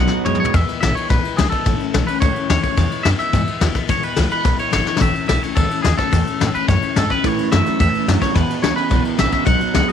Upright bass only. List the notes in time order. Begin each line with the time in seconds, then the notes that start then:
0.00 B1
0.27 F#2
0.41 muted upright bass stroke
0.54 E2
0.83 A1
1.10 B1
1.39 C#2
1.66 A1
1.80 muted upright bass stroke
1.94 B1
2.22 C#2
2.36 muted upright bass stroke
2.50 D#2
2.78 E2
3.05 F#2
3.19 muted upright bass stroke
3.34 G#2
3.48 muted upright bass stroke
3.61 D#2
3.89 E2
4.04 muted upright bass stroke
4.18 C#2
4.45 B1
4.60 muted upright bass stroke
4.74 G#1
5.01 A1
5.16 muted upright bass stroke
5.30 B1
5.57 C#2
5.86 D#2
6.13 E2
6.42 A2
6.56 muted upright bass stroke
6.69 F#2
6.83 muted upright bass stroke
6.97 G#2
7.10 muted upright bass stroke
7.24 A2
7.53 F#2
7.68 muted upright bass stroke
7.80 E2
8.08 F#2
8.36 E2
8.64 C#2
8.91 B1
9.19 A1
9.33 muted upright bass stroke
9.47 B1
9.75 C#2